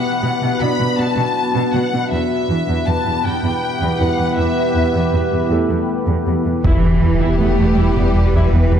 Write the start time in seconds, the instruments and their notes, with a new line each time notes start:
Already playing: ambient pad B3 D4 F#4 B4, grand piano D4 D5, violin section F#5
0.23 cello section B2
0.42 cello section B2
0.61 cello section B2, grand piano D4 D5, violin section B5
0.80 cello section B2
0.98 cello section B2, violin section A5
1.18 cello section B2
1.55 cello section B2
1.74 cello section B2, violin section F#5
1.93 cello section B2
2.12 cello section E2, ambient pad B3 E4 G4 B4, violin section E5
2.50 cello section E2
2.68 cello section E2
2.87 cello section E2, violin section A5
3.06 cello section E2
3.25 cello section E2, violin section G5
3.44 cello section E2
3.82 cello section E2
4.00 cello section E2, grand piano B3 B4, violin section F#5
4.20 cello section E2
4.38 cello section E2, violin section E5
4.76 cello section E2
4.95 cello section E2
5.14 cello section E2
5.32 cello section E2
5.51 cello section E2, grand piano A3 A4
5.70 cello section E2
6.08 cello section E2
6.27 cello section E2
6.46 cello section E2
6.64 sub bass E1, double bass section E2, analog synth bass E2, cello section E3, ambient pad B3 E4 G4 B4, viola section E4, violin section G4 B4, taiko, impact
6.83 analog synth bass E2
7.02 analog synth bass E2, double bass section E2, viola section G3, grand piano E4
7.21 double bass section E2, analog synth bass E2, viola section E4
7.40 analog synth bass E2, double bass section E2, cello section A3, viola section B3
7.58 analog synth bass E2, double bass section E2, viola section G3
7.77 analog synth bass E2, double bass section E2, cello section G3, viola section E4
7.96 analog synth bass E2, double bass section E2, viola section B3
8.14 analog synth bass E2
8.34 analog synth bass E2, double bass section E2, viola section E4, taiko
8.53 analog synth bass E2, double bass section E2, cello section E3, viola section B3
8.71 analog synth bass E2, double bass section E2, viola section G3